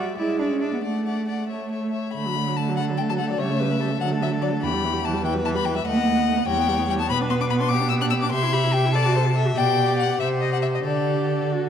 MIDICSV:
0, 0, Header, 1, 5, 480
1, 0, Start_track
1, 0, Key_signature, 2, "major"
1, 0, Tempo, 435414
1, 913, Time_signature, 6, 3, 24, 8
1, 2359, Tempo, 412655
1, 8131, Key_signature, 1, "major"
1, 10999, Tempo, 431655
1, 13359, End_track
2, 0, Start_track
2, 0, Title_t, "Violin"
2, 0, Program_c, 0, 40
2, 0, Note_on_c, 0, 76, 37
2, 189, Note_off_c, 0, 76, 0
2, 196, Note_on_c, 0, 76, 36
2, 428, Note_off_c, 0, 76, 0
2, 438, Note_on_c, 0, 76, 31
2, 665, Note_off_c, 0, 76, 0
2, 672, Note_on_c, 0, 76, 29
2, 908, Note_off_c, 0, 76, 0
2, 919, Note_on_c, 0, 78, 37
2, 1153, Note_off_c, 0, 78, 0
2, 1158, Note_on_c, 0, 78, 35
2, 1394, Note_off_c, 0, 78, 0
2, 1409, Note_on_c, 0, 78, 31
2, 1628, Note_off_c, 0, 78, 0
2, 1635, Note_on_c, 0, 76, 32
2, 1869, Note_off_c, 0, 76, 0
2, 1876, Note_on_c, 0, 76, 31
2, 2097, Note_off_c, 0, 76, 0
2, 2104, Note_on_c, 0, 76, 37
2, 2342, Note_off_c, 0, 76, 0
2, 2349, Note_on_c, 0, 83, 67
2, 2852, Note_on_c, 0, 81, 54
2, 2870, Note_off_c, 0, 83, 0
2, 3078, Note_off_c, 0, 81, 0
2, 3085, Note_on_c, 0, 78, 67
2, 3178, Note_off_c, 0, 78, 0
2, 3331, Note_on_c, 0, 79, 63
2, 3379, Note_off_c, 0, 79, 0
2, 3468, Note_on_c, 0, 81, 62
2, 3513, Note_off_c, 0, 81, 0
2, 3579, Note_on_c, 0, 78, 48
2, 3693, Note_off_c, 0, 78, 0
2, 3704, Note_on_c, 0, 74, 52
2, 3821, Note_on_c, 0, 76, 65
2, 3838, Note_off_c, 0, 74, 0
2, 4524, Note_off_c, 0, 76, 0
2, 4531, Note_on_c, 0, 78, 72
2, 4624, Note_off_c, 0, 78, 0
2, 4782, Note_on_c, 0, 76, 67
2, 4875, Note_off_c, 0, 76, 0
2, 5008, Note_on_c, 0, 74, 52
2, 5101, Note_off_c, 0, 74, 0
2, 5249, Note_on_c, 0, 83, 70
2, 5737, Note_on_c, 0, 81, 63
2, 5754, Note_off_c, 0, 83, 0
2, 5969, Note_off_c, 0, 81, 0
2, 5976, Note_on_c, 0, 79, 78
2, 6069, Note_off_c, 0, 79, 0
2, 6210, Note_on_c, 0, 81, 71
2, 6259, Note_off_c, 0, 81, 0
2, 6336, Note_on_c, 0, 83, 77
2, 6445, Note_on_c, 0, 79, 66
2, 6462, Note_off_c, 0, 83, 0
2, 6564, Note_off_c, 0, 79, 0
2, 6571, Note_on_c, 0, 76, 74
2, 6684, Note_off_c, 0, 76, 0
2, 6691, Note_on_c, 0, 78, 84
2, 7390, Note_off_c, 0, 78, 0
2, 7397, Note_on_c, 0, 79, 89
2, 7873, Note_off_c, 0, 79, 0
2, 7894, Note_on_c, 0, 79, 71
2, 7942, Note_off_c, 0, 79, 0
2, 8005, Note_on_c, 0, 81, 75
2, 8113, Note_off_c, 0, 81, 0
2, 8120, Note_on_c, 0, 83, 105
2, 8213, Note_off_c, 0, 83, 0
2, 8363, Note_on_c, 0, 84, 78
2, 8412, Note_off_c, 0, 84, 0
2, 8487, Note_on_c, 0, 86, 79
2, 8534, Note_off_c, 0, 86, 0
2, 8596, Note_on_c, 0, 83, 82
2, 8645, Note_off_c, 0, 83, 0
2, 8710, Note_on_c, 0, 84, 84
2, 8812, Note_on_c, 0, 86, 94
2, 8829, Note_off_c, 0, 84, 0
2, 9046, Note_off_c, 0, 86, 0
2, 9053, Note_on_c, 0, 88, 80
2, 9107, Note_off_c, 0, 88, 0
2, 9187, Note_on_c, 0, 90, 96
2, 9238, Note_off_c, 0, 90, 0
2, 9295, Note_on_c, 0, 88, 75
2, 9348, Note_off_c, 0, 88, 0
2, 9428, Note_on_c, 0, 86, 77
2, 9536, Note_off_c, 0, 86, 0
2, 9543, Note_on_c, 0, 84, 87
2, 9792, Note_on_c, 0, 83, 81
2, 9810, Note_off_c, 0, 84, 0
2, 10025, Note_on_c, 0, 79, 84
2, 10043, Note_off_c, 0, 83, 0
2, 10250, Note_off_c, 0, 79, 0
2, 10257, Note_on_c, 0, 81, 81
2, 10737, Note_off_c, 0, 81, 0
2, 10990, Note_on_c, 0, 79, 100
2, 11430, Note_off_c, 0, 79, 0
2, 11471, Note_on_c, 0, 78, 74
2, 11695, Note_off_c, 0, 78, 0
2, 11701, Note_on_c, 0, 76, 79
2, 11790, Note_off_c, 0, 76, 0
2, 11934, Note_on_c, 0, 75, 62
2, 12056, Note_off_c, 0, 75, 0
2, 12066, Note_on_c, 0, 78, 79
2, 12113, Note_off_c, 0, 78, 0
2, 12173, Note_on_c, 0, 76, 46
2, 12223, Note_off_c, 0, 76, 0
2, 12311, Note_on_c, 0, 75, 64
2, 12358, Note_off_c, 0, 75, 0
2, 12421, Note_on_c, 0, 74, 57
2, 13138, Note_off_c, 0, 74, 0
2, 13359, End_track
3, 0, Start_track
3, 0, Title_t, "Violin"
3, 0, Program_c, 1, 40
3, 0, Note_on_c, 1, 74, 37
3, 190, Note_off_c, 1, 74, 0
3, 199, Note_on_c, 1, 74, 44
3, 425, Note_off_c, 1, 74, 0
3, 432, Note_on_c, 1, 74, 40
3, 667, Note_off_c, 1, 74, 0
3, 672, Note_on_c, 1, 74, 34
3, 908, Note_off_c, 1, 74, 0
3, 919, Note_on_c, 1, 74, 36
3, 1154, Note_off_c, 1, 74, 0
3, 1166, Note_on_c, 1, 74, 35
3, 1398, Note_off_c, 1, 74, 0
3, 1412, Note_on_c, 1, 74, 32
3, 1641, Note_off_c, 1, 74, 0
3, 1648, Note_on_c, 1, 73, 35
3, 1880, Note_off_c, 1, 73, 0
3, 1890, Note_on_c, 1, 73, 33
3, 2122, Note_off_c, 1, 73, 0
3, 2136, Note_on_c, 1, 73, 29
3, 2361, Note_off_c, 1, 73, 0
3, 3099, Note_on_c, 1, 69, 59
3, 3804, Note_on_c, 1, 73, 65
3, 3821, Note_off_c, 1, 69, 0
3, 4051, Note_on_c, 1, 71, 66
3, 4068, Note_off_c, 1, 73, 0
3, 4297, Note_on_c, 1, 69, 60
3, 4314, Note_off_c, 1, 71, 0
3, 5267, Note_on_c, 1, 67, 57
3, 5285, Note_off_c, 1, 69, 0
3, 5958, Note_off_c, 1, 67, 0
3, 5965, Note_on_c, 1, 71, 69
3, 6675, Note_off_c, 1, 71, 0
3, 6703, Note_on_c, 1, 75, 70
3, 7403, Note_off_c, 1, 75, 0
3, 7416, Note_on_c, 1, 73, 74
3, 8138, Note_on_c, 1, 71, 76
3, 8155, Note_off_c, 1, 73, 0
3, 8853, Note_on_c, 1, 67, 69
3, 8871, Note_off_c, 1, 71, 0
3, 9560, Note_off_c, 1, 67, 0
3, 9567, Note_on_c, 1, 76, 82
3, 10276, Note_on_c, 1, 74, 89
3, 10294, Note_off_c, 1, 76, 0
3, 10516, Note_off_c, 1, 74, 0
3, 10528, Note_on_c, 1, 72, 68
3, 10621, Note_off_c, 1, 72, 0
3, 10752, Note_on_c, 1, 76, 67
3, 11006, Note_on_c, 1, 74, 63
3, 11023, Note_off_c, 1, 76, 0
3, 11708, Note_off_c, 1, 74, 0
3, 11715, Note_on_c, 1, 72, 66
3, 12417, Note_off_c, 1, 72, 0
3, 12437, Note_on_c, 1, 69, 54
3, 13359, Note_off_c, 1, 69, 0
3, 13359, End_track
4, 0, Start_track
4, 0, Title_t, "Viola"
4, 0, Program_c, 2, 41
4, 0, Note_on_c, 2, 55, 63
4, 113, Note_off_c, 2, 55, 0
4, 193, Note_on_c, 2, 56, 44
4, 826, Note_off_c, 2, 56, 0
4, 925, Note_on_c, 2, 57, 41
4, 1559, Note_off_c, 2, 57, 0
4, 1648, Note_on_c, 2, 57, 38
4, 2280, Note_off_c, 2, 57, 0
4, 2368, Note_on_c, 2, 57, 46
4, 2492, Note_on_c, 2, 54, 35
4, 2509, Note_off_c, 2, 57, 0
4, 2610, Note_on_c, 2, 57, 42
4, 2628, Note_off_c, 2, 54, 0
4, 2741, Note_on_c, 2, 54, 39
4, 2759, Note_off_c, 2, 57, 0
4, 2853, Note_off_c, 2, 54, 0
4, 2865, Note_on_c, 2, 57, 48
4, 2995, Note_on_c, 2, 54, 40
4, 3013, Note_off_c, 2, 57, 0
4, 3121, Note_on_c, 2, 57, 47
4, 3138, Note_off_c, 2, 54, 0
4, 3234, Note_on_c, 2, 54, 43
4, 3252, Note_off_c, 2, 57, 0
4, 3342, Note_off_c, 2, 54, 0
4, 3357, Note_on_c, 2, 57, 42
4, 3478, Note_on_c, 2, 54, 39
4, 3496, Note_off_c, 2, 57, 0
4, 3583, Note_on_c, 2, 57, 45
4, 3600, Note_off_c, 2, 54, 0
4, 3705, Note_on_c, 2, 54, 40
4, 3722, Note_off_c, 2, 57, 0
4, 3819, Note_off_c, 2, 54, 0
4, 3826, Note_on_c, 2, 55, 50
4, 3940, Note_on_c, 2, 57, 44
4, 3958, Note_off_c, 2, 55, 0
4, 4066, Note_on_c, 2, 55, 43
4, 4083, Note_off_c, 2, 57, 0
4, 4176, Note_on_c, 2, 57, 40
4, 4194, Note_off_c, 2, 55, 0
4, 4293, Note_off_c, 2, 57, 0
4, 4300, Note_on_c, 2, 55, 44
4, 4417, Note_on_c, 2, 57, 40
4, 4435, Note_off_c, 2, 55, 0
4, 4525, Note_off_c, 2, 57, 0
4, 4532, Note_on_c, 2, 54, 50
4, 4658, Note_on_c, 2, 57, 43
4, 4676, Note_off_c, 2, 54, 0
4, 4770, Note_on_c, 2, 54, 46
4, 4788, Note_off_c, 2, 57, 0
4, 4891, Note_on_c, 2, 57, 40
4, 4909, Note_off_c, 2, 54, 0
4, 4997, Note_off_c, 2, 57, 0
4, 5004, Note_on_c, 2, 54, 50
4, 5120, Note_on_c, 2, 57, 43
4, 5137, Note_off_c, 2, 54, 0
4, 5234, Note_off_c, 2, 57, 0
4, 5241, Note_on_c, 2, 52, 49
4, 5372, Note_on_c, 2, 55, 46
4, 5389, Note_off_c, 2, 52, 0
4, 5495, Note_on_c, 2, 52, 46
4, 5513, Note_off_c, 2, 55, 0
4, 5613, Note_on_c, 2, 55, 44
4, 5631, Note_off_c, 2, 52, 0
4, 5716, Note_off_c, 2, 55, 0
4, 5723, Note_on_c, 2, 52, 50
4, 5848, Note_on_c, 2, 55, 41
4, 5866, Note_off_c, 2, 52, 0
4, 5962, Note_on_c, 2, 52, 52
4, 5979, Note_off_c, 2, 55, 0
4, 6083, Note_on_c, 2, 55, 51
4, 6100, Note_off_c, 2, 52, 0
4, 6194, Note_off_c, 2, 55, 0
4, 6201, Note_on_c, 2, 52, 55
4, 6319, Note_on_c, 2, 55, 47
4, 6337, Note_off_c, 2, 52, 0
4, 6448, Note_on_c, 2, 52, 52
4, 6466, Note_off_c, 2, 55, 0
4, 6556, Note_on_c, 2, 55, 45
4, 6574, Note_off_c, 2, 52, 0
4, 6671, Note_off_c, 2, 55, 0
4, 6678, Note_on_c, 2, 57, 56
4, 6812, Note_on_c, 2, 59, 51
4, 6830, Note_off_c, 2, 57, 0
4, 6926, Note_on_c, 2, 57, 51
4, 6943, Note_off_c, 2, 59, 0
4, 7047, Note_on_c, 2, 59, 49
4, 7065, Note_off_c, 2, 57, 0
4, 7165, Note_off_c, 2, 59, 0
4, 7172, Note_on_c, 2, 57, 58
4, 7279, Note_on_c, 2, 59, 42
4, 7297, Note_off_c, 2, 57, 0
4, 7395, Note_off_c, 2, 59, 0
4, 7402, Note_on_c, 2, 55, 53
4, 7522, Note_on_c, 2, 59, 55
4, 7539, Note_off_c, 2, 55, 0
4, 7641, Note_on_c, 2, 55, 58
4, 7659, Note_off_c, 2, 59, 0
4, 7757, Note_on_c, 2, 59, 50
4, 7774, Note_off_c, 2, 55, 0
4, 7881, Note_off_c, 2, 59, 0
4, 7888, Note_on_c, 2, 55, 58
4, 8010, Note_on_c, 2, 59, 46
4, 8027, Note_off_c, 2, 55, 0
4, 8114, Note_off_c, 2, 59, 0
4, 8121, Note_on_c, 2, 59, 66
4, 8254, Note_on_c, 2, 62, 56
4, 8272, Note_off_c, 2, 59, 0
4, 8363, Note_on_c, 2, 59, 57
4, 8381, Note_off_c, 2, 62, 0
4, 8481, Note_on_c, 2, 62, 53
4, 8498, Note_off_c, 2, 59, 0
4, 8589, Note_off_c, 2, 62, 0
4, 8596, Note_on_c, 2, 59, 65
4, 8717, Note_on_c, 2, 62, 45
4, 8734, Note_off_c, 2, 59, 0
4, 8836, Note_on_c, 2, 59, 54
4, 8853, Note_off_c, 2, 62, 0
4, 8949, Note_on_c, 2, 62, 59
4, 8967, Note_off_c, 2, 59, 0
4, 9072, Note_off_c, 2, 62, 0
4, 9079, Note_on_c, 2, 59, 53
4, 9194, Note_on_c, 2, 62, 55
4, 9211, Note_off_c, 2, 59, 0
4, 9320, Note_on_c, 2, 59, 59
4, 9338, Note_off_c, 2, 62, 0
4, 9438, Note_on_c, 2, 62, 54
4, 9455, Note_off_c, 2, 59, 0
4, 9536, Note_off_c, 2, 62, 0
4, 9543, Note_on_c, 2, 67, 65
4, 9674, Note_on_c, 2, 64, 53
4, 9692, Note_off_c, 2, 67, 0
4, 9791, Note_on_c, 2, 67, 55
4, 9808, Note_off_c, 2, 64, 0
4, 9917, Note_on_c, 2, 64, 55
4, 9935, Note_off_c, 2, 67, 0
4, 10035, Note_off_c, 2, 64, 0
4, 10042, Note_on_c, 2, 67, 54
4, 10166, Note_on_c, 2, 64, 47
4, 10183, Note_off_c, 2, 67, 0
4, 10275, Note_off_c, 2, 64, 0
4, 10282, Note_on_c, 2, 69, 52
4, 10399, Note_on_c, 2, 66, 55
4, 10416, Note_off_c, 2, 69, 0
4, 10530, Note_on_c, 2, 69, 55
4, 10547, Note_off_c, 2, 66, 0
4, 10634, Note_on_c, 2, 66, 44
4, 10652, Note_off_c, 2, 69, 0
4, 10746, Note_off_c, 2, 66, 0
4, 10753, Note_on_c, 2, 69, 57
4, 10869, Note_on_c, 2, 66, 53
4, 10887, Note_off_c, 2, 69, 0
4, 10985, Note_off_c, 2, 66, 0
4, 10992, Note_on_c, 2, 67, 64
4, 11657, Note_off_c, 2, 67, 0
4, 11705, Note_on_c, 2, 67, 56
4, 12412, Note_off_c, 2, 67, 0
4, 12442, Note_on_c, 2, 67, 56
4, 13167, Note_on_c, 2, 66, 52
4, 13183, Note_off_c, 2, 67, 0
4, 13359, Note_off_c, 2, 66, 0
4, 13359, End_track
5, 0, Start_track
5, 0, Title_t, "Cello"
5, 0, Program_c, 3, 42
5, 198, Note_on_c, 3, 64, 63
5, 436, Note_on_c, 3, 62, 56
5, 452, Note_off_c, 3, 64, 0
5, 561, Note_on_c, 3, 61, 56
5, 577, Note_off_c, 3, 62, 0
5, 677, Note_on_c, 3, 62, 51
5, 694, Note_off_c, 3, 61, 0
5, 795, Note_off_c, 3, 62, 0
5, 812, Note_on_c, 3, 59, 47
5, 912, Note_off_c, 3, 59, 0
5, 918, Note_on_c, 3, 57, 50
5, 2101, Note_off_c, 3, 57, 0
5, 2374, Note_on_c, 3, 50, 54
5, 3773, Note_off_c, 3, 50, 0
5, 3821, Note_on_c, 3, 49, 57
5, 4525, Note_off_c, 3, 49, 0
5, 4539, Note_on_c, 3, 50, 60
5, 5253, Note_on_c, 3, 40, 62
5, 5270, Note_off_c, 3, 50, 0
5, 6689, Note_off_c, 3, 40, 0
5, 6696, Note_on_c, 3, 39, 61
5, 7400, Note_off_c, 3, 39, 0
5, 7411, Note_on_c, 3, 40, 61
5, 8129, Note_on_c, 3, 47, 67
5, 8147, Note_off_c, 3, 40, 0
5, 9555, Note_off_c, 3, 47, 0
5, 9562, Note_on_c, 3, 48, 76
5, 10970, Note_off_c, 3, 48, 0
5, 11000, Note_on_c, 3, 47, 66
5, 11660, Note_off_c, 3, 47, 0
5, 11710, Note_on_c, 3, 48, 59
5, 12415, Note_off_c, 3, 48, 0
5, 12420, Note_on_c, 3, 50, 58
5, 13359, Note_off_c, 3, 50, 0
5, 13359, End_track
0, 0, End_of_file